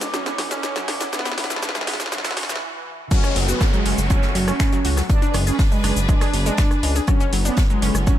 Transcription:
Already playing: string section D3 B3 C#4, ambient pad E4 A4 D6, riser
0.01 analog synth bass F#1, ambient pad F#5, snare, shaker
0.14 synth arpeggio sound F#3, analog polysynth C#4, snare, shaker
0.26 synth arpeggio sound B3, snare, shaker
0.38 synth arpeggio sound F#3, snare, open hi-hat
0.51 analog polysynth C#4, synth arpeggio sound C#4, snare, shaker
0.63 snare, shaker
0.76 synth arpeggio sound F#3, snare, shaker
0.88 analog synth bass C#2, synth arpeggio sound D4, snare, open hi-hat
1.01 synth arpeggio sound F#3, snare, shaker
1.13 string section F#3 E4 G#4 B4, analog polysynth B3, ambient pad F#4, snare, shaker
1.19 snare
1.25 synth arpeggio sound B3, snare, shaker
1.32 ambient pad B4 E5, snare
1.38 synth arpeggio sound E3, snare, open hi-hat
1.44 snare
1.50 analog polysynth A3, synth arpeggio sound E4, snare, shaker
1.56 snare
1.63 snare, shaker
1.69 snare
1.75 synth arpeggio sound E3, analog polysynth G#3, snare, shaker
1.81 snare
1.87 synth arpeggio sound B3, snare, open hi-hat
1.94 snare
2.00 snare, shaker
2.06 snare
2.12 synth arpeggio sound E3, analog polysynth F#3, snare, shaker
2.18 snare
2.25 synth arpeggio sound E4, snare, open hi-hat, shaker
2.31 snare
2.37 analog synth bass F#2, snare, open hi-hat
2.43 snare
2.49 synth arpeggio sound E3, analog polysynth E3, snare, shaker
2.56 snare
3.11 synth arpeggio sound F#3, string section A3 C#4 F#4, analog polysynth C#4, kick, closed hi-hat, crash, downlifter, shaker
3.24 synth arpeggio sound C#4, cross-stick, shaker
3.36 analog synth bass F#1, synth arpeggio sound F#3, closed hi-hat, open hi-hat
3.49 analog polysynth B3, synth arpeggio sound F#4, shaker
3.61 kick, cross-stick, snare, closed hi-hat, shaker
3.73 synth arpeggio sound F#3, analog polysynth G#3, shaker
3.86 analog synth bass F#1, synth arpeggio sound C#4, closed hi-hat, open hi-hat
3.98 analog synth bass F#1, ambient pad A5, shaker
4.10 synth arpeggio sound F#3, analog polysynth C#4, kick, cross-stick, closed hi-hat, shaker
4.22 synth arpeggio sound A3, snare, shaker
4.35 analog synth bass F#1, synth arpeggio sound F#3, closed hi-hat, open hi-hat
4.48 analog polysynth C#4, synth arpeggio sound C#4, cross-stick, shaker
4.60 finger snap, kick, snare, closed hi-hat, shaker
4.72 synth arpeggio sound F#3, shaker
4.85 analog synth bass C#2, synth arpeggio sound F#4, closed hi-hat, open hi-hat
4.97 synth arpeggio sound F#3, cross-stick, snare, shaker
5.10 string section F#3 D4 G#4 B4, analog polysynth D4, kick, closed hi-hat, shaker
5.22 synth arpeggio sound D4, shaker
5.34 analog synth bass F#1, synth arpeggio sound G#3, cross-stick, closed hi-hat, open hi-hat
5.47 analog polysynth C#4, synth arpeggio sound G#4, shaker
5.59 kick, snare, open hi-hat, shaker
5.72 analog polysynth G#3, synth arpeggio sound G#3, shaker
5.84 analog synth bass F#1, synth arpeggio sound D4, cross-stick, closed hi-hat, open hi-hat
5.96 analog synth bass F#1, ambient pad G#5, closed hi-hat, shaker
6.09 synth arpeggio sound G#3, analog polysynth D4, kick, shaker
6.21 synth arpeggio sound G#4, cross-stick, open hi-hat, shaker
6.34 analog synth bass F#1, closed hi-hat, open hi-hat
6.46 synth arpeggio sound G#3, analog polysynth D4, shaker
6.57 synth arpeggio sound D4, finger snap, kick, snare, closed hi-hat, shaker
6.71 cross-stick, shaker
6.83 analog synth bass C#2, synth arpeggio sound G#3, closed hi-hat, open hi-hat
6.95 synth arpeggio sound G#4, closed hi-hat, shaker
7.07 string section D3 B3 C#4, synth arpeggio sound F#3, analog polysynth C#4, ambient pad E4, kick, cross-stick, closed hi-hat, shaker
7.20 synth arpeggio sound C#4, shaker
7.33 analog synth bass F#1, synth arpeggio sound F#3, closed hi-hat, open hi-hat
7.45 analog polysynth B3, synth arpeggio sound D4, shaker
7.57 ambient pad A4, kick, cross-stick, snare, closed hi-hat, shaker
7.70 synth arpeggio sound F#3, analog polysynth G#3, shaker
7.82 analog synth bass F#1, synth arpeggio sound C#4, closed hi-hat, open hi-hat
7.95 analog synth bass F#1, ambient pad F#5 D6, cross-stick, shaker
8.07 synth arpeggio sound F#3, analog polysynth C#4, kick, closed hi-hat, shaker

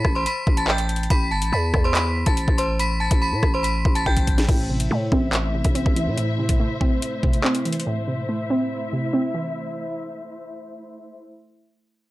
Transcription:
Already playing: synth bell B5 B6
0.05 808-style bass A1, kick, cross-stick
0.15 synth bell C5 C6
0.26 synth bell B5 B6, closed hi-hat
0.47 808-style bass A1, kick
0.57 synth bell A5 A6, closed hi-hat
0.68 synth bell G5 G6, clap
0.78 closed hi-hat
0.89 closed hi-hat
0.96 closed hi-hat
1.03 closed hi-hat
1.10 808-style bass A1, synth bell B5 B6, kick, closed hi-hat
1.31 808-style bass G1, synth bell A5 A6
1.42 808-style bass A1, closed hi-hat
1.52 808-style bass E2, synth bell B5 B6
1.74 808-style bass E2, kick, cross-stick
1.84 synth bell C5 C6
1.95 synth bell B5 B6, clap, closed hi-hat
2.26 808-style bass A1, synth bell A5 A6, kick, closed hi-hat
2.37 closed hi-hat
2.48 808-style bass A1, kick
2.58 synth bell C5 C6, closed hi-hat
2.79 synth bell B5 B6, closed hi-hat
3.00 synth bell A5 A6
3.11 808-style bass A1, kick, closed hi-hat
3.22 synth bell B5 B6
3.32 808-style bass A2
3.43 808-style bass A1, kick, cross-stick
3.54 synth bell C5 C6
3.63 synth bell B5 B6, closed hi-hat
3.85 808-style bass A1, kick
3.95 synth bell A5 A6, closed hi-hat
4.06 808-style bass A1, synth bell G5 G6, kick
4.17 kick, closed hi-hat
4.27 kick, closed hi-hat
4.38 snare, closed hi-hat
4.48 808-style bass A1, synth pluck A2, string section A3 E4 C5 E5, kick, closed hi-hat, crash
4.69 synth pluck C3
4.80 closed hi-hat
4.91 808-style bass A2, synth pluck A3
5.12 808-style bass A1, synth pluck C4, kick
5.33 clap, closed hi-hat
5.54 synth pluck C3
5.64 808-style bass A1, kick, closed hi-hat
5.75 synth pluck C4, closed hi-hat
5.86 808-style bass A1, kick
5.96 synth pluck E3, closed hi-hat
6.07 808-style bass A2
6.17 synth pluck A2, closed hi-hat
6.39 synth pluck C3
6.49 kick, closed hi-hat
6.60 synth pluck A3
6.81 synth pluck C4, kick
7.02 closed hi-hat
7.23 synth pluck C3, kick
7.33 closed hi-hat
7.44 synth pluck C4, clap
7.55 closed hi-hat
7.65 synth pluck E3, closed hi-hat
7.73 closed hi-hat
7.80 closed hi-hat
7.87 synth pluck A2, string section E4 E5
8.07 synth pluck C3
8.29 synth pluck A3
8.50 synth pluck C4
8.93 synth pluck C3
9.13 synth pluck C4
9.34 synth pluck E3

